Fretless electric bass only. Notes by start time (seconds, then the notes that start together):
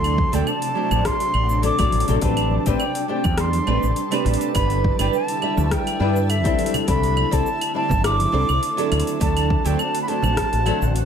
Already playing: D2
0.33 D2
0.91 A1
1.34 A1
1.79 A1
1.93 A1
2.09 A1
2.22 A1
2.67 A1
3.25 E2
3.68 A1
3.83 A1
4.26 A1
4.55 G1
4.99 G1
5.58 D2
6.00 G2
6.45 D2
6.88 C2
7.33 C2
7.91 G1
8.34 C2
8.49 C2
8.92 D2
9.21 D2
9.66 D2
10.24 A1
10.53 A1
10.82 A1